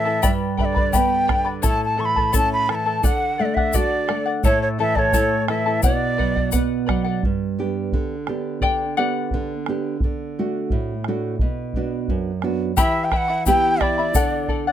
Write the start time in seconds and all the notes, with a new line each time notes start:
Already playing: A2 E3 E5
0.05 E4 A4 A5
0.22 G2 G4 B4 D5 G5 B5, bombo low, shaker
0.57 D3 B4 D5 E5 G5 B5, bombo low
0.65 D5
0.75 B4 D5 B5, bombo low
0.93 B3 G4 B4 D5 G5 B5, bombo low, shaker
1.27 D3 B4 D5 G5 B5, bombo rim, bombo low
1.45 B4 D5 B5
1.62 A2 E4 A4 C#5 E5 A5, bombo low, shaker
1.67 A5
1.84 A5
1.97 E3 E4 A4 E5 A5 C#6
2.05 B5
2.16 E4 A4 A5, bombo low
2.32 C#4 E4 A4 C#5 E5 A5, bombo low, shaker
2.37 A5
2.53 B5
2.68 E3 E4 A4 E5 A5 B5, bombo rim
2.75 A5
2.86 E4 A4 A5
3.03 D3 A4 D5 F#5, bombo low, shaker
3.38 A3 A4 D5 E5 F#5
3.45 D5
3.54 D5 E5 F#5, bombo low
3.73 F#4 A4 D5 F#5, bombo low, shaker
4.07 A3 A4 D5 F#5, bombo rim
4.26 D5 F#5
4.44 A2 E4 A4 C#5 E5 A5, bombo low, shaker
4.62 C#5
4.79 E3 E4 A4 E5 A5
4.96 E4 A4 C#5 D5 A5, bombo low
5.13 A3 E4 A4 C#5 E5 A5, bombo low, shaker
5.48 E3 E4 A4 E5 A5, bombo rim
5.66 E4 A4 A5
5.83 B2 B4 D5 F#5, bombo low, shaker
6.18 F#3 B4 D5 F#5, bombo low
6.36 D5 F#5, bombo low
6.52 B3 B4 D5 F#5, bombo low, shaker
6.86 F#3 B4 D5 F#5, bombo rim, bombo low
7.04 D5 F#5
7.23 G2, bombo low
7.59 B3 D4 G4
7.92 D3, bombo low
8.27 B3 D4 G4, bombo rim
8.61 D3 D5 G5, bombo low
8.97 B3 D4 G4 D5 F#5
9.31 D3, bombo low
9.66 B3 D4 G4, bombo rim
10.00 D3, bombo low
10.39 A3 D4 F#4
10.70 A2, bombo low
11.04 A3, bombo rim
11.08 D4 F#4
11.39 B2, bombo low
11.74 B3 D4 F#4, bombo low
12.08 F#2, bombo low
12.42 B3 D4 F#4, bombo rim
12.77 E3 E4 G4 E5 G5 B5, bombo low, shaker
13.04 G5
13.11 E4 E5 G5 B5, bombo rim, bombo low
13.16 F#5
13.28 E4 E5 B5
13.46 B3 E4 G4 E5 G5 B5, bombo low, shaker
13.80 E4 D5 E5 G5 B5, bombo rim, bombo low
13.98 E4 E5 B5
14.14 D3 A4 D5 F#5, bombo low, shaker
14.48 A4 D5 F#5, bombo low
14.67 D5 F#5